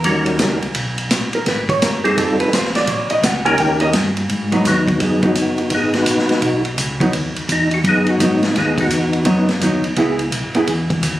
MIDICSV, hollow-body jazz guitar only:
0, 0, Header, 1, 2, 480
1, 0, Start_track
1, 0, Key_signature, 5, "minor"
1, 0, Tempo, 354191
1, 66, Time_signature, 4, 2, 24, 8
1, 15174, End_track
2, 0, Start_track
2, 0, Title_t, "Hollow-body jazz guitar"
2, 0, Program_c, 0, 26
2, 0, Note_on_c, 0, 70, 83
2, 342, Note_off_c, 0, 70, 0
2, 1829, Note_on_c, 0, 70, 84
2, 1988, Note_off_c, 0, 70, 0
2, 2013, Note_on_c, 0, 71, 87
2, 2295, Note_off_c, 0, 71, 0
2, 2297, Note_on_c, 0, 73, 102
2, 2461, Note_off_c, 0, 73, 0
2, 2472, Note_on_c, 0, 70, 88
2, 2761, Note_off_c, 0, 70, 0
2, 2767, Note_on_c, 0, 68, 87
2, 2936, Note_off_c, 0, 68, 0
2, 2949, Note_on_c, 0, 69, 83
2, 3242, Note_off_c, 0, 69, 0
2, 3258, Note_on_c, 0, 71, 87
2, 3421, Note_off_c, 0, 71, 0
2, 3439, Note_on_c, 0, 72, 80
2, 3727, Note_off_c, 0, 72, 0
2, 3739, Note_on_c, 0, 74, 100
2, 3922, Note_off_c, 0, 74, 0
2, 3922, Note_on_c, 0, 73, 98
2, 4206, Note_off_c, 0, 73, 0
2, 4211, Note_on_c, 0, 75, 101
2, 4389, Note_off_c, 0, 75, 0
2, 4389, Note_on_c, 0, 78, 93
2, 4676, Note_off_c, 0, 78, 0
2, 4682, Note_on_c, 0, 80, 120
2, 4852, Note_off_c, 0, 80, 0
2, 4878, Note_on_c, 0, 79, 96
2, 5163, Note_on_c, 0, 75, 106
2, 5166, Note_off_c, 0, 79, 0
2, 5268, Note_off_c, 0, 75, 0
2, 6123, Note_on_c, 0, 54, 64
2, 6135, Note_on_c, 0, 59, 59
2, 6135, Note_on_c, 0, 63, 67
2, 6280, Note_off_c, 0, 54, 0
2, 6287, Note_off_c, 0, 59, 0
2, 6287, Note_off_c, 0, 63, 0
2, 7079, Note_on_c, 0, 54, 62
2, 7095, Note_on_c, 0, 59, 63
2, 7097, Note_on_c, 0, 63, 70
2, 7238, Note_off_c, 0, 54, 0
2, 7246, Note_off_c, 0, 59, 0
2, 7248, Note_off_c, 0, 63, 0
2, 9496, Note_on_c, 0, 54, 65
2, 9507, Note_on_c, 0, 59, 63
2, 9511, Note_on_c, 0, 63, 72
2, 9647, Note_off_c, 0, 54, 0
2, 9653, Note_off_c, 0, 59, 0
2, 9655, Note_off_c, 0, 63, 0
2, 11116, Note_on_c, 0, 54, 49
2, 11125, Note_on_c, 0, 63, 58
2, 11126, Note_on_c, 0, 59, 51
2, 11384, Note_off_c, 0, 54, 0
2, 11388, Note_off_c, 0, 63, 0
2, 11389, Note_off_c, 0, 59, 0
2, 12542, Note_on_c, 0, 54, 67
2, 12548, Note_on_c, 0, 59, 67
2, 12554, Note_on_c, 0, 63, 74
2, 12818, Note_off_c, 0, 54, 0
2, 12821, Note_off_c, 0, 59, 0
2, 12824, Note_off_c, 0, 63, 0
2, 13031, Note_on_c, 0, 54, 53
2, 13040, Note_on_c, 0, 59, 64
2, 13050, Note_on_c, 0, 63, 66
2, 13302, Note_off_c, 0, 54, 0
2, 13307, Note_off_c, 0, 59, 0
2, 13312, Note_off_c, 0, 63, 0
2, 13512, Note_on_c, 0, 59, 63
2, 13522, Note_on_c, 0, 64, 63
2, 13527, Note_on_c, 0, 68, 63
2, 13783, Note_off_c, 0, 59, 0
2, 13788, Note_off_c, 0, 64, 0
2, 13791, Note_off_c, 0, 68, 0
2, 14299, Note_on_c, 0, 59, 62
2, 14310, Note_on_c, 0, 64, 65
2, 14320, Note_on_c, 0, 68, 69
2, 14451, Note_off_c, 0, 59, 0
2, 14457, Note_off_c, 0, 64, 0
2, 14461, Note_off_c, 0, 68, 0
2, 15174, End_track
0, 0, End_of_file